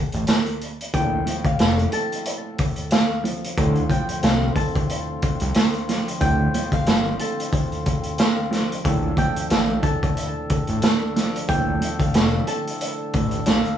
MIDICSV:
0, 0, Header, 1, 6, 480
1, 0, Start_track
1, 0, Tempo, 659341
1, 681, Time_signature, 4, 2, 24, 8
1, 10030, End_track
2, 0, Start_track
2, 0, Title_t, "Nylon-string guitar"
2, 0, Program_c, 0, 24
2, 681, Note_on_c, 0, 79, 106
2, 1038, Note_off_c, 0, 79, 0
2, 1062, Note_on_c, 0, 77, 82
2, 1382, Note_off_c, 0, 77, 0
2, 1402, Note_on_c, 0, 81, 87
2, 2093, Note_off_c, 0, 81, 0
2, 2126, Note_on_c, 0, 77, 83
2, 2340, Note_off_c, 0, 77, 0
2, 2839, Note_on_c, 0, 79, 89
2, 3056, Note_off_c, 0, 79, 0
2, 3084, Note_on_c, 0, 77, 76
2, 3299, Note_off_c, 0, 77, 0
2, 3319, Note_on_c, 0, 81, 94
2, 3677, Note_off_c, 0, 81, 0
2, 4519, Note_on_c, 0, 79, 97
2, 4877, Note_off_c, 0, 79, 0
2, 4903, Note_on_c, 0, 77, 83
2, 5222, Note_off_c, 0, 77, 0
2, 5241, Note_on_c, 0, 81, 81
2, 5932, Note_off_c, 0, 81, 0
2, 5965, Note_on_c, 0, 77, 85
2, 6180, Note_off_c, 0, 77, 0
2, 6684, Note_on_c, 0, 79, 76
2, 6899, Note_off_c, 0, 79, 0
2, 6922, Note_on_c, 0, 77, 74
2, 7138, Note_off_c, 0, 77, 0
2, 7153, Note_on_c, 0, 81, 91
2, 7514, Note_off_c, 0, 81, 0
2, 8362, Note_on_c, 0, 79, 101
2, 8719, Note_off_c, 0, 79, 0
2, 8741, Note_on_c, 0, 77, 76
2, 9061, Note_off_c, 0, 77, 0
2, 9081, Note_on_c, 0, 81, 83
2, 9772, Note_off_c, 0, 81, 0
2, 9806, Note_on_c, 0, 77, 86
2, 10020, Note_off_c, 0, 77, 0
2, 10030, End_track
3, 0, Start_track
3, 0, Title_t, "Tonewheel organ"
3, 0, Program_c, 1, 16
3, 2603, Note_on_c, 1, 60, 67
3, 2603, Note_on_c, 1, 65, 83
3, 2604, Note_on_c, 1, 50, 72
3, 6413, Note_off_c, 1, 60, 0
3, 6413, Note_off_c, 1, 65, 0
3, 6414, Note_off_c, 1, 50, 0
3, 6438, Note_on_c, 1, 50, 68
3, 6438, Note_on_c, 1, 62, 73
3, 6438, Note_on_c, 1, 69, 81
3, 8341, Note_off_c, 1, 69, 0
3, 8367, Note_on_c, 1, 69, 80
3, 10030, Note_off_c, 1, 50, 0
3, 10030, Note_off_c, 1, 62, 0
3, 10030, Note_off_c, 1, 69, 0
3, 10030, End_track
4, 0, Start_track
4, 0, Title_t, "Upright piano"
4, 0, Program_c, 2, 0
4, 0, Control_c, 2, 64, 127
4, 684, Note_on_c, 2, 45, 99
4, 915, Note_on_c, 2, 53, 76
4, 1403, Note_on_c, 2, 69, 90
4, 1883, Note_off_c, 2, 45, 0
4, 2118, Note_off_c, 2, 53, 0
4, 2357, Note_on_c, 2, 53, 86
4, 2599, Note_off_c, 2, 53, 0
4, 2603, Note_off_c, 2, 69, 0
4, 2608, Note_on_c, 2, 45, 94
4, 2611, Control_c, 2, 64, 0
4, 2749, Control_c, 2, 64, 127
4, 2843, Note_on_c, 2, 53, 87
4, 3327, Note_on_c, 2, 69, 84
4, 3805, Note_off_c, 2, 45, 0
4, 4042, Note_off_c, 2, 53, 0
4, 4286, Note_on_c, 2, 53, 81
4, 4519, Note_on_c, 2, 45, 96
4, 4524, Note_off_c, 2, 69, 0
4, 4753, Note_off_c, 2, 53, 0
4, 4764, Note_on_c, 2, 53, 86
4, 5241, Note_on_c, 2, 69, 93
4, 5720, Note_off_c, 2, 45, 0
4, 5963, Note_off_c, 2, 53, 0
4, 6193, Note_on_c, 2, 53, 88
4, 6437, Note_off_c, 2, 53, 0
4, 6441, Note_off_c, 2, 69, 0
4, 6443, Note_on_c, 2, 45, 93
4, 6449, Control_c, 2, 64, 0
4, 6570, Control_c, 2, 64, 127
4, 6682, Note_on_c, 2, 53, 86
4, 7158, Note_on_c, 2, 69, 87
4, 7642, Note_off_c, 2, 45, 0
4, 7882, Note_off_c, 2, 53, 0
4, 8127, Note_on_c, 2, 53, 85
4, 8360, Note_off_c, 2, 69, 0
4, 8364, Note_on_c, 2, 45, 98
4, 8583, Note_off_c, 2, 53, 0
4, 8594, Note_on_c, 2, 53, 77
4, 9083, Note_on_c, 2, 69, 90
4, 9563, Note_off_c, 2, 45, 0
4, 9798, Note_off_c, 2, 53, 0
4, 10030, Note_off_c, 2, 69, 0
4, 10030, End_track
5, 0, Start_track
5, 0, Title_t, "Analog synth bass"
5, 0, Program_c, 3, 38
5, 100, Note_on_c, 3, 33, 91
5, 182, Note_off_c, 3, 33, 0
5, 683, Note_on_c, 3, 34, 110
5, 877, Note_off_c, 3, 34, 0
5, 1161, Note_on_c, 3, 29, 111
5, 1356, Note_off_c, 3, 29, 0
5, 2603, Note_on_c, 3, 38, 112
5, 2797, Note_off_c, 3, 38, 0
5, 3082, Note_on_c, 3, 36, 100
5, 3277, Note_off_c, 3, 36, 0
5, 3941, Note_on_c, 3, 36, 94
5, 4022, Note_off_c, 3, 36, 0
5, 4522, Note_on_c, 3, 38, 102
5, 4717, Note_off_c, 3, 38, 0
5, 5001, Note_on_c, 3, 31, 101
5, 5196, Note_off_c, 3, 31, 0
5, 6442, Note_on_c, 3, 34, 117
5, 6637, Note_off_c, 3, 34, 0
5, 6921, Note_on_c, 3, 33, 91
5, 7116, Note_off_c, 3, 33, 0
5, 7780, Note_on_c, 3, 33, 85
5, 7862, Note_off_c, 3, 33, 0
5, 8363, Note_on_c, 3, 34, 112
5, 8557, Note_off_c, 3, 34, 0
5, 8841, Note_on_c, 3, 29, 100
5, 9036, Note_off_c, 3, 29, 0
5, 9566, Note_on_c, 3, 33, 96
5, 9759, Note_off_c, 3, 33, 0
5, 9802, Note_on_c, 3, 34, 102
5, 9915, Note_off_c, 3, 34, 0
5, 10030, End_track
6, 0, Start_track
6, 0, Title_t, "Drums"
6, 89, Note_on_c, 9, 42, 50
6, 161, Note_off_c, 9, 42, 0
6, 195, Note_on_c, 9, 42, 94
6, 206, Note_on_c, 9, 38, 121
6, 268, Note_off_c, 9, 42, 0
6, 279, Note_off_c, 9, 38, 0
6, 335, Note_on_c, 9, 42, 39
6, 408, Note_off_c, 9, 42, 0
6, 447, Note_on_c, 9, 42, 64
6, 519, Note_off_c, 9, 42, 0
6, 587, Note_on_c, 9, 42, 53
6, 660, Note_off_c, 9, 42, 0
6, 682, Note_on_c, 9, 42, 97
6, 683, Note_on_c, 9, 36, 122
6, 754, Note_off_c, 9, 42, 0
6, 756, Note_off_c, 9, 36, 0
6, 922, Note_on_c, 9, 42, 78
6, 995, Note_off_c, 9, 42, 0
6, 1052, Note_on_c, 9, 36, 101
6, 1055, Note_on_c, 9, 42, 60
6, 1125, Note_off_c, 9, 36, 0
6, 1128, Note_off_c, 9, 42, 0
6, 1157, Note_on_c, 9, 42, 85
6, 1165, Note_on_c, 9, 38, 123
6, 1229, Note_off_c, 9, 42, 0
6, 1238, Note_off_c, 9, 38, 0
6, 1303, Note_on_c, 9, 42, 39
6, 1376, Note_off_c, 9, 42, 0
6, 1397, Note_on_c, 9, 42, 79
6, 1470, Note_off_c, 9, 42, 0
6, 1545, Note_on_c, 9, 42, 50
6, 1617, Note_off_c, 9, 42, 0
6, 1642, Note_on_c, 9, 42, 90
6, 1714, Note_off_c, 9, 42, 0
6, 1880, Note_on_c, 9, 42, 82
6, 1886, Note_on_c, 9, 36, 95
6, 1953, Note_off_c, 9, 42, 0
6, 1959, Note_off_c, 9, 36, 0
6, 2008, Note_on_c, 9, 42, 50
6, 2081, Note_off_c, 9, 42, 0
6, 2115, Note_on_c, 9, 42, 95
6, 2126, Note_on_c, 9, 38, 120
6, 2188, Note_off_c, 9, 42, 0
6, 2199, Note_off_c, 9, 38, 0
6, 2366, Note_on_c, 9, 42, 65
6, 2438, Note_off_c, 9, 42, 0
6, 2506, Note_on_c, 9, 42, 55
6, 2579, Note_off_c, 9, 42, 0
6, 2601, Note_on_c, 9, 42, 98
6, 2603, Note_on_c, 9, 36, 125
6, 2674, Note_off_c, 9, 42, 0
6, 2676, Note_off_c, 9, 36, 0
6, 2732, Note_on_c, 9, 42, 37
6, 2805, Note_off_c, 9, 42, 0
6, 2836, Note_on_c, 9, 36, 93
6, 2842, Note_on_c, 9, 42, 78
6, 2909, Note_off_c, 9, 36, 0
6, 2915, Note_off_c, 9, 42, 0
6, 2975, Note_on_c, 9, 42, 61
6, 3048, Note_off_c, 9, 42, 0
6, 3077, Note_on_c, 9, 42, 89
6, 3086, Note_on_c, 9, 38, 122
6, 3150, Note_off_c, 9, 42, 0
6, 3158, Note_off_c, 9, 38, 0
6, 3317, Note_on_c, 9, 36, 104
6, 3317, Note_on_c, 9, 42, 84
6, 3390, Note_off_c, 9, 36, 0
6, 3390, Note_off_c, 9, 42, 0
6, 3462, Note_on_c, 9, 36, 99
6, 3465, Note_on_c, 9, 42, 51
6, 3535, Note_off_c, 9, 36, 0
6, 3538, Note_off_c, 9, 42, 0
6, 3563, Note_on_c, 9, 42, 86
6, 3636, Note_off_c, 9, 42, 0
6, 3801, Note_on_c, 9, 42, 81
6, 3806, Note_on_c, 9, 36, 97
6, 3874, Note_off_c, 9, 42, 0
6, 3878, Note_off_c, 9, 36, 0
6, 3929, Note_on_c, 9, 42, 51
6, 4002, Note_off_c, 9, 42, 0
6, 4035, Note_on_c, 9, 42, 93
6, 4046, Note_on_c, 9, 38, 123
6, 4108, Note_off_c, 9, 42, 0
6, 4119, Note_off_c, 9, 38, 0
6, 4175, Note_on_c, 9, 42, 36
6, 4248, Note_off_c, 9, 42, 0
6, 4286, Note_on_c, 9, 38, 42
6, 4286, Note_on_c, 9, 42, 68
6, 4359, Note_off_c, 9, 38, 0
6, 4359, Note_off_c, 9, 42, 0
6, 4427, Note_on_c, 9, 42, 56
6, 4499, Note_off_c, 9, 42, 0
6, 4521, Note_on_c, 9, 42, 96
6, 4522, Note_on_c, 9, 36, 121
6, 4594, Note_off_c, 9, 42, 0
6, 4595, Note_off_c, 9, 36, 0
6, 4762, Note_on_c, 9, 42, 78
6, 4834, Note_off_c, 9, 42, 0
6, 4892, Note_on_c, 9, 36, 99
6, 4895, Note_on_c, 9, 42, 60
6, 4965, Note_off_c, 9, 36, 0
6, 4968, Note_off_c, 9, 42, 0
6, 4997, Note_on_c, 9, 42, 86
6, 5005, Note_on_c, 9, 38, 121
6, 5070, Note_off_c, 9, 42, 0
6, 5078, Note_off_c, 9, 38, 0
6, 5237, Note_on_c, 9, 42, 81
6, 5309, Note_off_c, 9, 42, 0
6, 5385, Note_on_c, 9, 42, 53
6, 5458, Note_off_c, 9, 42, 0
6, 5479, Note_on_c, 9, 36, 107
6, 5482, Note_on_c, 9, 42, 87
6, 5552, Note_off_c, 9, 36, 0
6, 5555, Note_off_c, 9, 42, 0
6, 5620, Note_on_c, 9, 42, 37
6, 5693, Note_off_c, 9, 42, 0
6, 5721, Note_on_c, 9, 42, 80
6, 5725, Note_on_c, 9, 36, 93
6, 5794, Note_off_c, 9, 42, 0
6, 5798, Note_off_c, 9, 36, 0
6, 5848, Note_on_c, 9, 42, 51
6, 5921, Note_off_c, 9, 42, 0
6, 5955, Note_on_c, 9, 42, 98
6, 5966, Note_on_c, 9, 38, 120
6, 6028, Note_off_c, 9, 42, 0
6, 6039, Note_off_c, 9, 38, 0
6, 6206, Note_on_c, 9, 38, 42
6, 6206, Note_on_c, 9, 42, 66
6, 6278, Note_off_c, 9, 38, 0
6, 6279, Note_off_c, 9, 42, 0
6, 6347, Note_on_c, 9, 42, 55
6, 6420, Note_off_c, 9, 42, 0
6, 6441, Note_on_c, 9, 42, 98
6, 6443, Note_on_c, 9, 36, 127
6, 6514, Note_off_c, 9, 42, 0
6, 6515, Note_off_c, 9, 36, 0
6, 6676, Note_on_c, 9, 36, 99
6, 6682, Note_on_c, 9, 42, 78
6, 6749, Note_off_c, 9, 36, 0
6, 6755, Note_off_c, 9, 42, 0
6, 6816, Note_on_c, 9, 42, 62
6, 6888, Note_off_c, 9, 42, 0
6, 6917, Note_on_c, 9, 42, 89
6, 6926, Note_on_c, 9, 38, 119
6, 6990, Note_off_c, 9, 42, 0
6, 6999, Note_off_c, 9, 38, 0
6, 7157, Note_on_c, 9, 36, 103
6, 7157, Note_on_c, 9, 42, 82
6, 7230, Note_off_c, 9, 36, 0
6, 7230, Note_off_c, 9, 42, 0
6, 7301, Note_on_c, 9, 36, 98
6, 7305, Note_on_c, 9, 42, 52
6, 7374, Note_off_c, 9, 36, 0
6, 7378, Note_off_c, 9, 42, 0
6, 7402, Note_on_c, 9, 42, 87
6, 7475, Note_off_c, 9, 42, 0
6, 7641, Note_on_c, 9, 42, 81
6, 7645, Note_on_c, 9, 36, 92
6, 7713, Note_off_c, 9, 42, 0
6, 7718, Note_off_c, 9, 36, 0
6, 7769, Note_on_c, 9, 42, 52
6, 7841, Note_off_c, 9, 42, 0
6, 7876, Note_on_c, 9, 42, 95
6, 7887, Note_on_c, 9, 38, 123
6, 7949, Note_off_c, 9, 42, 0
6, 7959, Note_off_c, 9, 38, 0
6, 8126, Note_on_c, 9, 38, 42
6, 8127, Note_on_c, 9, 42, 65
6, 8199, Note_off_c, 9, 38, 0
6, 8199, Note_off_c, 9, 42, 0
6, 8267, Note_on_c, 9, 42, 55
6, 8340, Note_off_c, 9, 42, 0
6, 8362, Note_on_c, 9, 42, 100
6, 8363, Note_on_c, 9, 36, 125
6, 8435, Note_off_c, 9, 42, 0
6, 8436, Note_off_c, 9, 36, 0
6, 8602, Note_on_c, 9, 42, 78
6, 8675, Note_off_c, 9, 42, 0
6, 8733, Note_on_c, 9, 36, 100
6, 8736, Note_on_c, 9, 42, 60
6, 8805, Note_off_c, 9, 36, 0
6, 8809, Note_off_c, 9, 42, 0
6, 8838, Note_on_c, 9, 42, 86
6, 8846, Note_on_c, 9, 38, 126
6, 8910, Note_off_c, 9, 42, 0
6, 8919, Note_off_c, 9, 38, 0
6, 9078, Note_on_c, 9, 42, 79
6, 9151, Note_off_c, 9, 42, 0
6, 9226, Note_on_c, 9, 42, 51
6, 9299, Note_off_c, 9, 42, 0
6, 9324, Note_on_c, 9, 42, 89
6, 9397, Note_off_c, 9, 42, 0
6, 9562, Note_on_c, 9, 42, 78
6, 9566, Note_on_c, 9, 36, 94
6, 9635, Note_off_c, 9, 42, 0
6, 9639, Note_off_c, 9, 36, 0
6, 9689, Note_on_c, 9, 42, 52
6, 9762, Note_off_c, 9, 42, 0
6, 9797, Note_on_c, 9, 42, 97
6, 9808, Note_on_c, 9, 38, 124
6, 9870, Note_off_c, 9, 42, 0
6, 9881, Note_off_c, 9, 38, 0
6, 9937, Note_on_c, 9, 42, 37
6, 10010, Note_off_c, 9, 42, 0
6, 10030, End_track
0, 0, End_of_file